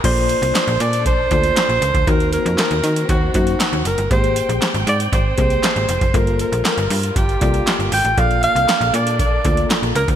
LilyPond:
<<
  \new Staff \with { instrumentName = "Alto saxophone" } { \time 4/4 \key bes \major \tempo 4 = 118 c''4. d''8 c''2 | bes'8 bes'8 bes'4 ges'8 ges'4 bes'8 | c''4 r8 d''8 c''2 | bes'8 bes'8 bes'4 g'4. g''8 |
f''8 f''4 d''8 d''4 r8 bes'8 | }
  \new Staff \with { instrumentName = "Tine electric piano" } { \time 4/4 \key bes \major <bes f' a' d''>4~ <bes f' a' d''>16 r4 r16 <bes f' a' d''>4 r8 | <bes ees' ges' c''>4~ <bes ees' ges' c''>16 r4 r16 <bes ees' ges' c''>4 r8 | <bes g' aes' c''>4~ <bes g' aes' c''>16 r4 r16 <bes g' aes' c''>4 r8 | <bes f' a' c''>4~ <bes f' a' c''>16 r4 r16 <bes f' a' d''>4 r8 |
<bes f' a' d''>4~ <bes f' a' d''>16 r4 r16 <bes f' a' d''>4 r8 | }
  \new Staff \with { instrumentName = "String section" } { \time 4/4 \key bes \major <bes d' a'>1 | <ees c' ges'>1 | <aes c' g''>1 | <g bes f'>1 |
<bes d' a'>1 | }
  \new Staff \with { instrumentName = "FM bass" } { \clef bass \time 4/4 \key bes \major bes,,8. c,16 r16 bes,,16 bes,8 bes,,8 d,8 r16 bes,,16 des,16 d,16 | ees,8. f,16 r16 ees,16 ees8 ees,8 ges,8 r16 ees,16 ges,,16 g,,16 | aes,,8. bes,,16 r16 aes,,16 aes,8 aes,,8 c,8 r16 aes,,16 f,,16 ges,,16 | g,,8. bes,,16 r16 g,,16 g,8 g,,8 c,8 r16 g,,16 aes,,16 a,,16 |
bes,,8. c,16 r16 bes,,16 bes,8 bes,,8 d,8 r16 bes,,16 des,16 d,16 | }
  \new DrumStaff \with { instrumentName = "Drums" } \drummode { \time 4/4 <cymc hh bd>16 hh16 hh16 hh16 <hc hh sn>16 hh16 hh16 hh16 <hh bd>8 <hh bd>16 hh16 <hc hh sn>16 hh16 hh16 <hh bd>16 | <hh bd>16 hh16 hh16 hh16 <hc hh sn>16 hh16 hh16 hh16 <hh bd>8 <hh bd>16 hh16 <hc hh sn>16 hh16 hh16 hh16 | <hh bd>16 hh16 hh16 hh16 <hc hh sn>16 hh16 hh16 hh16 <hh bd>8 <hh bd>16 hh16 <hc hh sn>16 hh16 hh16 <hh bd>16 | <hh bd>16 hh16 hh16 hh16 <hc hh sn>16 hh16 hho16 hh16 <hh bd>16 hh16 <hh bd>16 hh16 <hc hh sn>16 hh16 hho16 hh16 |
<hh bd>16 hh16 hh16 hh16 <hc hh sn>16 hh16 hh16 hh16 <hh bd>8 <hh bd>16 hh16 <hc hh sn>16 hh16 hh16 <hh bd>16 | }
>>